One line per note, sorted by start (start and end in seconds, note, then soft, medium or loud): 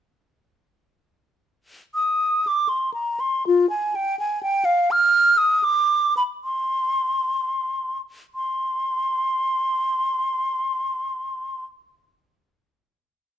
1.95 2.49 D#6 medium
2.47 2.70 D6 medium
2.69 2.93 C6 medium
2.94 3.21 A#5 medium
3.20 3.46 C6 medium
3.47 3.69 F4 medium
3.70 3.97 G#5 medium
3.95 4.19 G5 medium
4.19 4.42 G#5 medium
4.43 4.66 G5 medium
4.65 4.93 F5 medium
4.91 5.39 F6 medium
5.38 5.65 D#6 medium
5.64 6.16 D6 medium
6.17 6.23 B5 medium
6.44 7.98 C6 medium
8.35 11.65 C6 medium